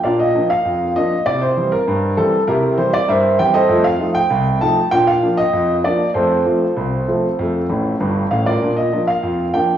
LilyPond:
<<
  \new Staff \with { instrumentName = "Grand piano" } { \time 2/4 \key bes \major \tempo 4 = 98 <bes' d'' f''>16 ees''8 f''8. ees''8 | d''16 c''8 bes'8. a'8 | <e' g' bes'>8 c''16 d''16 <bes' c'' e''>8 g''16 <a' c'' ees''>16~ | <a' c'' ees''>16 f''8 g''8. a''8 |
g''16 f''8 ees''8. d''8 | <f' a' c''>2~ | <f' a' c''>4 r8 f''16 <f' bes' d''>16~ | <f' bes' d''>16 ees''8 f''8. g''8 | }
  \new Staff \with { instrumentName = "Grand piano" } { \clef bass \time 2/4 \key bes \major <bes, d'>8 <f bes d'>8 f,8 <f bes d'>8 | <c e'>8 <e g c'>8 g,8 <e g c'>8 | c8 <e g c'>8 g,8 <e g c'>8 | <f, a>8 <f a ees'>8 c,8 <f a ees'>8 |
<bes, d'>8 <f bes d'>8 f,8 <f bes d'>8 | <f, a>8 <f a c'>8 c,8 <f a c'>8 | <f, a>8 <a,, a,>8 <g,, g,>8 <a,, a,>8 | <bes, d'>8 <f bes d'>8 f,8 <f bes d'>8 | }
>>